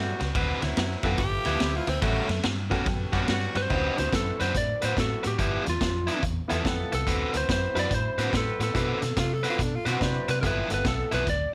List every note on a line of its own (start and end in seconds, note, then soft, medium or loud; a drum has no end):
0.00 0.11 G2 medium
0.00 0.32 G3 medium
0.00 0.32 A3 loud
0.00 0.32 B3 medium
0.00 0.32 C#4 medium
0.00 0.33 F#4 loud
0.20 0.30 C#2 medium
0.20 muted overdriven electric guitar stroke soft
0.20 snare soft
0.20 ride medium
0.35 0.53 D2 loud
0.35 0.62 D3 medium
0.35 0.62 C4 medium
0.35 0.61 F#4 medium
0.35 0.61 B4 medium
0.35 kick loud
0.35 ride medium
0.61 0.72 D2 medium
0.61 1.10 F#3 medium
0.61 1.10 B3 medium
0.61 1.10 C4 medium
0.61 1.10 E4 medium
0.61 muted overdriven electric guitar stroke medium
0.61 snare soft
0.61 ride medium
0.77 0.95 F#2 medium
0.77 muted overdriven electric guitar stroke soft
0.77 snare loud
0.77 ride medium
1.03 1.14 F#2 medium
1.03 1.20 D3 medium
1.03 1.58 B3 medium
1.03 1.19 C4 medium
1.03 1.58 E4 medium
1.03 1.58 F4 medium
1.03 1.19 F#4 loud
1.03 1.58 G4 medium
1.03 1.58 A4 medium
1.03 1.19 B4 medium
1.03 kick medium
1.03 snare soft
1.03 ride medium
1.18 1.36 G1 loud
1.18 1.78 G4 loud
1.18 muted overdriven electric guitar stroke medium
1.18 kick loud
1.18 snare soft
1.18 ride medium
1.45 1.56 D2 medium
1.45 1.59 G2 medium
1.45 1.59 F3 medium
1.45 1.60 B3 medium
1.45 1.60 E4 loud
1.45 snare soft
1.45 ride medium
1.60 1.79 D2 medium
1.60 2.02 F3 medium
1.60 2.03 A3 medium
1.60 2.03 B3 medium
1.60 2.03 E4 medium
1.60 muted overdriven electric guitar stroke soft
1.60 snare loud
1.60 ride medium
1.76 1.89 F4 medium
1.87 1.97 D2 medium
1.87 2.02 C4 medium
1.87 muted overdriven electric guitar stroke medium
1.87 snare soft
1.87 ride medium
2.02 2.20 A1 loud
2.02 2.29 A2 medium
2.02 2.28 G3 loud
2.02 2.43 A3 loud
2.02 2.28 C#4 loud
2.02 2.28 F#4 medium
2.02 kick loud
2.02 snare soft
2.02 ride medium
2.29 2.39 F#2 medium
2.29 muted overdriven electric guitar stroke medium
2.29 snare soft
2.29 ride medium
2.43 2.72 G2 medium
2.43 muted overdriven electric guitar stroke soft
2.43 snare loud
2.43 ride medium
2.70 2.85 A2 medium
2.70 2.86 G3 medium
2.70 3.25 B3 medium
2.70 3.25 C#4 medium
2.70 2.86 C#4 medium
2.70 3.25 F#4 medium
2.70 2.86 F#4 loud
2.70 3.25 G4 medium
2.70 3.26 A4 medium
2.70 kick medium
2.70 snare soft
2.70 ride medium
2.86 3.04 F#2 medium
2.86 muted overdriven electric guitar stroke soft
2.86 kick loud
2.86 snare soft
2.86 ride medium
3.13 3.23 F#2 medium
3.13 3.27 A2 medium
3.13 3.22 G3 medium
3.13 3.28 G3 medium
3.13 3.22 B3 medium
3.13 3.28 C#4 medium
3.13 3.22 C#4 medium
3.13 3.28 F#4 medium
3.13 3.23 F#4 loud
3.13 kick medium
3.13 snare soft
3.13 ride medium
3.28 3.46 G2 loud
3.28 3.67 G3 medium
3.28 3.67 B3 medium
3.28 3.68 C#4 medium
3.28 3.68 F#4 loud
3.28 muted overdriven electric guitar stroke soft
3.28 snare loud
3.28 ride medium
3.55 3.65 G2 loud
3.55 3.98 C5 loud
3.55 muted overdriven electric guitar stroke medium
3.55 snare soft
3.55 ride medium
3.69 3.88 D2 medium
3.69 3.97 D3 medium
3.69 3.97 C4 medium
3.69 3.94 C#4 medium
3.69 3.94 D#4 medium
3.69 3.95 F4 medium
3.69 3.97 F#4 medium
3.69 3.95 G4 medium
3.69 3.96 B4 medium
3.69 3.95 C5 medium
3.69 kick medium
3.69 crash medium
3.96 4.08 D2 medium
3.96 4.87 C4 medium
3.96 4.45 C4 medium
3.96 4.87 D4 medium
3.96 4.87 E4 medium
3.96 4.46 E4 medium
3.96 4.46 F#4 medium
3.96 4.88 F#4 medium
3.96 4.88 B4 medium
3.96 4.14 C5 medium
3.96 muted overdriven electric guitar stroke medium
3.96 snare soft
3.96 closed hi-hat medium
4.13 4.30 F#2 medium
4.13 4.41 A4 medium
4.13 muted overdriven electric guitar stroke soft
4.13 kick medium
4.13 snare loud
4.13 closed hi-hat medium
4.40 4.50 F#2 medium
4.40 4.54 D3 medium
4.40 4.54 C4 medium
4.40 4.55 F#4 medium
4.40 4.55 B4 medium
4.40 4.56 C5 medium
4.40 snare soft
4.40 closed hi-hat medium
4.55 4.73 A2 medium
4.55 4.83 D5 medium
4.55 muted overdriven electric guitar stroke soft
4.55 kick medium
4.55 snare soft
4.55 closed hi-hat medium
4.82 4.92 A2 medium
4.82 4.95 D3 medium
4.82 4.96 C4 medium
4.82 4.96 F#4 medium
4.82 4.96 B4 loud
4.82 4.99 C5 medium
4.82 snare soft
4.82 closed hi-hat medium
4.96 5.14 A2 medium
4.96 5.38 B3 medium
4.96 5.39 C4 medium
4.96 5.39 E4 medium
4.96 5.39 F#4 medium
4.96 5.26 A4 medium
4.96 muted overdriven electric guitar stroke soft
4.96 kick medium
4.96 snare loud
4.96 closed hi-hat medium
5.23 5.35 A2 medium
5.23 5.68 G4 medium
5.23 muted overdriven electric guitar stroke soft
5.23 snare soft
5.23 closed hi-hat medium
5.38 5.56 G1 loud
5.38 5.65 G2 medium
5.38 5.66 F3 medium
5.38 5.65 B3 medium
5.38 5.65 E4 medium
5.38 kick medium
5.38 closed hi-hat medium
5.66 5.76 E2 medium
5.66 6.21 F4 medium
5.66 muted overdriven electric guitar stroke soft
5.66 snare soft
5.66 closed hi-hat medium
5.81 6.08 F2 medium
5.81 muted overdriven electric guitar stroke soft
5.81 kick medium
5.81 snare loud
5.81 closed hi-hat medium
6.07 6.21 G2 medium
6.07 6.22 F3 medium
6.07 6.22 B3 medium
6.07 6.22 E4 medium
6.07 snare soft
6.07 closed hi-hat medium
6.22 6.40 E2 medium
6.22 muted overdriven electric guitar stroke soft
6.22 kick medium
6.22 closed hi-hat medium
6.48 6.60 E2 medium
6.48 6.64 G2 medium
6.48 6.64 F3 medium
6.48 7.03 B3 medium
6.48 6.58 B3 medium
6.48 6.65 B3 medium
6.48 7.03 E4 medium
6.48 6.58 E4 medium
6.48 6.65 E4 medium
6.48 7.03 F4 medium
6.48 6.58 F4 medium
6.48 7.04 G4 medium
6.48 7.04 A4 medium
6.48 6.59 A4 medium
6.48 snare soft
6.48 closed hi-hat medium
6.64 6.83 F2 medium
6.64 7.03 B3 medium
6.64 7.04 A4 loud
6.64 muted overdriven electric guitar stroke soft
6.64 kick medium
6.64 snare loud
6.64 closed hi-hat medium
6.92 7.02 C2 medium
6.92 7.36 A4 medium
6.92 muted overdriven electric guitar stroke soft
6.92 snare soft
6.92 closed hi-hat medium
7.07 7.24 D2 medium
7.07 7.34 D3 medium
7.07 7.34 C4 medium
7.07 7.34 F#4 medium
7.07 7.33 B4 medium
7.07 kick medium
7.07 snare soft
7.07 closed hi-hat medium
7.33 7.44 D2 medium
7.33 7.81 C4 medium
7.33 7.82 E4 medium
7.33 7.82 F#4 medium
7.33 7.82 B4 medium
7.33 muted overdriven electric guitar stroke medium
7.33 snare soft
7.33 closed hi-hat medium
7.37 7.51 C5 medium
7.49 7.66 F#2 medium
7.49 7.78 C5 loud
7.49 muted overdriven electric guitar stroke soft
7.49 kick medium
7.49 snare loud
7.49 closed hi-hat medium
7.74 7.86 F#2 medium
7.74 7.90 D3 medium
7.74 8.29 C4 medium
7.74 7.90 C4 medium
7.74 8.29 D4 medium
7.74 8.29 E4 medium
7.74 8.29 F#4 medium
7.74 7.90 F#4 medium
7.74 7.90 B4 loud
7.74 8.30 B5 medium
7.74 snare soft
7.74 closed hi-hat medium
7.79 7.93 D5 loud
7.91 8.08 A2 medium
7.91 8.32 C5 medium
7.91 muted overdriven electric guitar stroke soft
7.91 kick medium
7.91 snare soft
7.91 closed hi-hat medium
8.18 8.28 A2 medium
8.18 8.33 D3 medium
8.18 8.33 C4 medium
8.18 8.33 F#4 medium
8.18 8.33 B4 medium
8.18 snare soft
8.18 closed hi-hat medium
8.33 8.51 A2 medium
8.33 8.86 C4 medium
8.33 8.86 E4 medium
8.33 8.86 F#4 medium
8.33 8.62 A4 medium
8.33 8.86 B4 medium
8.33 muted overdriven electric guitar stroke soft
8.33 kick medium
8.33 snare loud
8.33 closed hi-hat medium
8.60 8.69 A2 medium
8.60 9.84 A4 medium
8.60 muted overdriven electric guitar stroke soft
8.60 snare soft
8.60 closed hi-hat medium
8.72 8.92 B2 medium
8.72 9.02 D3 medium
8.72 8.98 C4 medium
8.72 9.01 C4 medium
8.72 8.98 D4 soft
8.72 8.98 E4 medium
8.72 8.98 F#4 medium
8.72 9.01 F#4 medium
8.72 8.98 B4 medium
8.72 9.01 B4 medium
8.72 kick medium
8.72 snare soft
8.72 closed hi-hat medium
9.02 9.12 B2 medium
9.02 muted overdriven electric guitar stroke medium
9.02 snare soft
9.02 closed hi-hat medium
9.16 9.44 C3 medium
9.16 9.35 F4 medium
9.16 muted overdriven electric guitar stroke soft
9.16 kick medium
9.16 snare loud
9.16 closed hi-hat medium
9.34 9.46 A4 medium
9.43 9.58 D3 medium
9.43 9.59 C4 medium
9.43 9.59 F#4 medium
9.43 9.59 B4 medium
9.43 snare soft
9.43 closed hi-hat medium
9.49 9.65 F4 medium
9.59 9.76 B2 medium
9.59 muted overdriven electric guitar stroke soft
9.59 kick medium
9.59 snare soft
9.59 closed hi-hat medium
9.63 9.77 D4 medium
9.76 9.88 F4 medium
9.85 9.96 B2 medium
9.85 10.00 D3 medium
9.85 9.94 C4 medium
9.85 10.01 C4 medium
9.85 9.94 E4 medium
9.85 9.95 F#4 medium
9.85 10.01 F#4 loud
9.85 10.01 B4 medium
9.85 9.95 B4 medium
9.85 snare soft
9.85 closed hi-hat medium
9.90 10.15 F#4 medium
10.00 10.19 C3 medium
10.00 10.42 C4 medium
10.00 10.40 C4 medium
10.00 10.42 D4 medium
10.00 10.40 E4 medium
10.00 10.41 E4 medium
10.00 10.43 F#4 medium
10.00 10.40 F#4 medium
10.00 10.40 B4 medium
10.00 10.43 D5 medium
10.00 muted overdriven electric guitar stroke soft
10.00 kick medium
10.00 snare loud
10.00 closed hi-hat medium
10.28 10.44 C3 medium
10.28 10.40 B4 medium
10.28 muted overdriven electric guitar stroke soft
10.28 snare soft
10.28 closed hi-hat medium
10.41 10.60 G1 medium
10.41 10.70 G2 medium
10.41 10.70 F3 medium
10.41 11.06 B3 medium
10.41 10.70 B3 medium
10.41 11.06 E4 medium
10.41 10.70 E4 medium
10.41 11.06 F4 medium
10.41 11.07 G4 medium
10.41 11.07 A4 medium
10.41 10.44 A#4 medium
10.41 kick medium
10.41 snare soft
10.41 closed hi-hat medium
10.47 10.72 B4 medium
10.69 10.81 G1 medium
10.69 11.18 B3 medium
10.69 11.18 A4 medium
10.69 muted overdriven electric guitar stroke soft
10.69 snare soft
10.69 closed hi-hat medium
10.74 10.87 B4 medium
10.85 11.03 B1 medium
10.85 11.14 A4 medium
10.85 muted overdriven electric guitar stroke soft
10.85 kick medium
10.85 snare loud
10.85 closed hi-hat medium
11.12 11.22 B1 medium
11.12 11.26 G2 medium
11.12 11.26 F3 medium
11.12 11.27 B3 medium
11.12 11.27 E4 loud
11.12 11.29 B4 medium
11.12 snare soft
11.12 closed hi-hat medium
11.27 11.44 D2 medium
11.27 11.53 D5 loud
11.27 muted overdriven electric guitar stroke soft
11.27 kick medium
11.27 snare soft
11.27 closed hi-hat medium